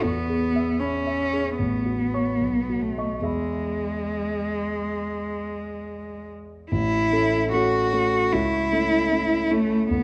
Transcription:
0.03 1.55 E2 soft
0.03 0.81 B3 medium
0.29 0.70 G#4 soft
0.56 0.96 E5 soft
0.79 1.58 C#4 medium
0.79 1.21 B5 soft
1.07 1.48 E5 soft
1.33 1.59 G#4 soft
1.58 2.38 A1 soft
1.58 2.83 B3 soft
1.86 2.30 F#4 soft
2.14 2.38 C#5 soft
2.14 2.38 C#6 soft
2.41 3.23 B1 soft
2.69 3.14 F#4 soft
2.82 3.26 A3 soft
2.98 3.23 D#5 soft
2.98 3.24 C#6 soft
3.20 6.64 E2 soft
3.20 6.28 G#3 soft
3.20 6.65 G#4 soft
3.20 6.66 E5 soft
3.25 6.67 B5 soft
6.72 7.11 A1 soft
6.72 7.49 E4 medium
7.12 7.49 A3 soft
7.12 7.49 C#4 soft
7.12 7.49 A4 soft
7.53 7.89 A3 soft
7.53 7.89 C#4 soft
7.53 8.34 F#4 medium
7.53 7.90 A4 soft
7.93 8.28 A3 soft
7.93 8.29 C#4 soft
7.93 8.29 A4 soft
8.33 8.71 C#2 soft
8.33 9.53 E4 medium
8.72 9.07 A3 soft
8.72 9.08 C#4 soft
8.72 9.08 E4 soft
9.12 9.47 A3 soft
9.12 9.48 C#4 soft
9.12 9.48 E4 soft
9.51 9.87 A3 soft
9.51 9.90 A3 medium
9.51 9.87 C#4 soft
9.51 9.87 E4 soft
9.90 10.03 D2 soft
9.90 10.03 B3 medium

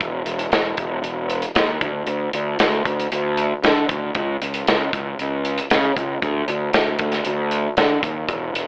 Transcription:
0.01 0.21 E1 medium
0.01 kick loud
0.01 closed hi-hat medium
0.25 0.46 E1 medium
0.25 closed hi-hat medium
0.39 closed hi-hat medium
0.51 0.71 E1 medium
0.51 snare loud
0.51 closed hi-hat medium
0.77 0.98 E1 medium
0.77 kick medium
0.77 closed hi-hat medium
1.03 1.43 E1 medium
1.03 closed hi-hat medium
1.30 closed hi-hat medium
1.42 closed hi-hat medium
1.55 1.76 D#2 loud
1.55 snare loud
1.55 closed hi-hat medium
1.81 2.02 D2 medium
1.81 kick loud
1.81 closed hi-hat medium
2.07 2.27 D2 medium
2.07 closed hi-hat medium
2.33 2.54 D2 medium
2.33 closed hi-hat medium
2.59 2.80 D2 medium
2.59 snare loud
2.59 closed hi-hat medium
2.85 3.05 D2 medium
2.85 kick medium
2.85 closed hi-hat medium
2.99 closed hi-hat medium
3.12 3.52 D2 medium
3.12 closed hi-hat medium
3.37 closed hi-hat medium
3.63 3.83 D3 medium
3.63 snare loud
3.63 closed hi-hat medium
3.89 4.09 D2 medium
3.89 kick medium
3.89 closed hi-hat medium
4.15 4.35 C#2 medium
4.15 kick loud
4.15 closed hi-hat medium
4.42 4.61 C#2 medium
4.42 closed hi-hat medium
4.54 closed hi-hat medium
4.67 4.88 C#2 medium
4.67 snare loud
4.67 closed hi-hat medium
4.93 5.13 C#2 medium
4.93 kick medium
4.93 closed hi-hat medium
5.19 5.59 C#2 medium
5.19 closed hi-hat medium
5.45 closed hi-hat medium
5.58 closed hi-hat medium
5.70 5.91 C#3 medium
5.70 snare loud
5.70 closed hi-hat medium
5.96 6.16 C#2 medium
5.96 kick medium
5.96 closed hi-hat medium
6.22 6.42 D2 medium
6.22 kick loud
6.22 closed hi-hat medium
6.48 6.68 D2 medium
6.48 closed hi-hat medium
6.73 6.94 D2 medium
6.73 snare loud
6.73 closed hi-hat medium
6.99 7.20 D2 medium
6.99 kick loud
6.99 closed hi-hat medium
7.12 snare soft
7.12 closed hi-hat medium
7.25 7.66 D2 medium
7.25 closed hi-hat medium
7.51 closed hi-hat medium
7.77 7.97 D3 medium
7.77 snare loud
7.77 closed hi-hat medium
8.03 8.23 D#2 loud
8.03 kick medium
8.03 closed hi-hat medium
8.29 8.49 E1 medium
8.29 kick loud
8.29 closed hi-hat medium
8.54 8.67 E1 medium
8.54 closed hi-hat medium

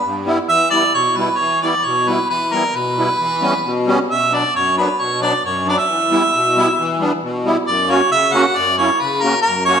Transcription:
0.00 0.23 B4 medium
0.05 0.39 G2 medium
0.25 0.38 G3 medium
0.25 0.38 B3 medium
0.25 0.39 E4 medium
0.49 0.83 E3 medium
0.49 0.70 E5 loud
0.70 0.83 G3 medium
0.70 0.84 B3 medium
0.70 0.84 E4 medium
0.70 0.93 D5 medium
0.94 1.28 B2 medium
0.94 1.18 C#5 medium
1.17 1.29 G3 medium
1.17 1.29 B3 medium
1.17 1.29 E4 medium
1.17 1.40 B4 medium
1.39 1.73 E3 medium
1.39 1.61 C#5 medium
1.62 1.74 G3 medium
1.62 1.74 B3 medium
1.62 1.75 E4 medium
1.62 1.86 D5 medium
1.84 2.19 B2 medium
1.84 2.10 C#5 medium
2.07 2.19 G3 medium
2.07 2.19 B3 medium
2.07 2.19 E4 medium
2.07 2.30 B4 medium
2.30 2.64 E3 medium
2.30 2.54 B4 medium
2.52 2.64 G3 medium
2.52 2.64 B3 medium
2.52 2.65 E4 medium
2.52 2.77 A#4 medium
2.75 3.08 B2 medium
2.75 3.88 B4 medium
2.97 3.09 G3 medium
2.97 3.09 B3 medium
2.97 3.10 E4 medium
3.19 3.53 E3 medium
3.41 3.53 G3 medium
3.41 3.54 B3 medium
3.41 3.54 C#4 medium
3.65 3.99 B2 medium
3.86 3.98 G3 medium
3.86 3.99 B3 medium
3.86 3.99 C#4 loud
4.09 4.44 B2 medium
4.09 4.36 E5 medium
4.31 4.43 F#3 medium
4.31 4.43 B3 medium
4.31 4.44 D4 medium
4.31 4.55 D5 medium
4.55 4.88 F#2 medium
4.55 4.76 C#5 medium
4.76 4.88 F#3 medium
4.76 4.89 B3 medium
4.76 4.89 D4 medium
4.76 5.02 B4 medium
4.99 5.33 B2 medium
4.99 5.22 C#5 medium
5.20 5.33 F#3 medium
5.20 5.33 B3 medium
5.20 5.33 D4 medium
5.20 5.43 D5 medium
5.44 5.78 F#2 medium
5.44 5.66 C#5 medium
5.66 5.78 F#3 medium
5.66 5.78 B3 medium
5.66 5.79 D4 medium
5.66 5.78 D5 medium
5.78 7.20 E5 medium
5.89 6.23 E3 medium
6.11 6.23 G3 medium
6.11 6.23 B3 medium
6.11 6.23 E4 medium
6.34 6.68 B2 medium
6.56 6.68 G3 medium
6.56 6.68 B3 medium
6.56 6.68 E4 medium
6.79 7.12 E3 medium
7.00 7.12 G3 medium
7.00 7.12 B3 medium
7.00 7.13 D4 medium
7.23 7.56 B2 medium
7.45 7.56 G3 medium
7.45 7.57 B3 medium
7.45 7.57 E4 medium
7.67 8.01 F#2 medium
7.67 7.92 D5 medium
7.88 8.00 A#3 medium
7.88 8.01 C#4 medium
7.88 8.01 F#4 medium
7.88 8.11 C#5 medium
8.11 8.45 C#3 medium
8.11 8.35 E5 loud
8.33 8.45 A#3 medium
8.33 8.45 C#4 medium
8.33 8.46 F#4 medium
8.33 8.59 F#5 medium
8.56 8.90 F#2 medium
8.56 8.77 D5 loud
8.78 8.90 A#3 medium
8.78 8.90 C#4 medium
8.78 8.91 E4 medium
8.78 9.02 C#5 medium
9.00 9.34 C#3 medium
9.00 9.23 B4 medium
9.22 9.34 A#3 medium
9.22 9.35 C#4 medium
9.22 9.35 F#4 medium
9.22 9.41 A#4 medium
9.42 9.79 F#2 medium
9.42 9.64 A#4 medium
9.65 9.78 A#3 medium
9.65 9.79 C#4 medium
9.65 9.79 F#4 medium
9.65 9.80 C#5 loud

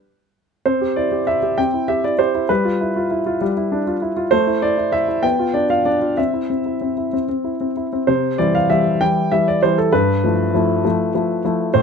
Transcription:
0.66 1.57 C4 soft
0.66 0.96 C5 medium
0.81 1.06 G4 soft
0.96 1.21 E4 soft
0.96 1.27 D5 medium
1.12 1.36 G4 soft
1.27 1.52 E4 soft
1.27 1.58 E5 medium
1.42 1.67 G4 soft
1.58 2.47 C4 soft
1.58 1.89 G5 medium
1.74 1.98 E4 soft
1.88 2.13 G4 soft
1.88 2.04 E5 medium
2.04 2.29 E4 soft
2.04 2.20 D5 medium
2.19 2.44 G4 soft
2.19 2.50 C5 medium
2.35 2.50 E4 soft
2.49 3.40 G3 medium
2.49 4.32 B4 medium
2.65 2.89 F4 soft
2.81 3.05 E4 soft
2.96 3.20 F4 soft
3.11 3.35 E4 soft
3.26 3.51 F4 soft
3.41 4.30 G3 soft
3.57 3.81 E4 soft
3.72 3.96 D4 soft
3.87 4.11 F4 soft
4.02 4.26 E4 soft
4.17 4.32 F4 soft
4.31 5.21 A3 medium
4.31 4.62 C5 medium
4.47 4.61 E4 soft
4.62 4.76 E4 soft
4.62 4.93 D5 medium
4.78 4.91 E4 soft
4.92 5.07 E4 soft
4.92 5.24 E5 medium
5.08 5.24 E4 soft
5.23 6.15 B3 soft
5.23 5.54 G5 medium
5.39 5.64 F4 soft
5.54 5.80 D4 soft
5.54 5.70 D5 medium
5.70 5.95 F4 soft
5.70 5.86 F5 medium
5.85 6.11 D4 soft
5.85 6.18 D5 medium
6.02 6.18 F4 soft
6.17 6.48 C4 soft
6.17 7.13 E5 medium
6.34 6.59 E4 soft
6.50 6.75 C4 soft
6.66 6.91 E4 soft
6.81 7.07 C4 soft
6.97 7.23 E4 soft
7.13 7.27 C4 soft
7.29 7.54 C4 soft
7.44 7.70 E4 soft
7.61 7.86 C4 soft
7.77 8.02 E4 soft
7.93 8.08 C4 soft
8.07 8.38 C3 soft
8.07 8.39 C5 medium
8.38 8.67 E3 soft
8.38 8.67 G3 soft
8.38 8.67 E4 soft
8.38 8.54 D5 medium
8.55 8.70 F5 medium
8.70 8.98 E3 soft
8.70 8.98 G3 soft
8.70 8.98 E4 soft
8.70 9.01 E5 medium
9.01 9.29 E3 soft
9.01 9.29 G3 soft
9.01 9.29 E4 soft
9.01 9.32 G5 medium
9.32 9.59 E3 soft
9.32 9.60 G3 soft
9.32 9.60 E4 soft
9.32 9.47 E5 medium
9.48 9.63 D5 medium
9.63 9.90 E3 soft
9.63 9.91 G3 soft
9.63 9.91 E4 soft
9.63 9.78 C5 medium
9.78 9.93 A4 medium
9.93 10.23 G2 medium
9.93 11.75 B4 medium
10.24 10.51 F3 soft
10.24 10.51 A3 soft
10.24 10.52 E4 soft
10.54 10.81 F3 soft
10.54 10.82 A3 soft
10.54 10.82 E4 soft
10.84 11.12 F3 soft
10.84 11.12 A3 soft
10.84 11.12 E4 soft
11.14 11.42 F3 soft
11.14 11.42 A3 soft
11.14 11.42 E4 soft
11.45 11.72 F3 soft
11.45 11.72 A3 soft
11.45 11.72 E4 soft
11.74 11.82 A2 medium
11.74 11.82 C5 medium

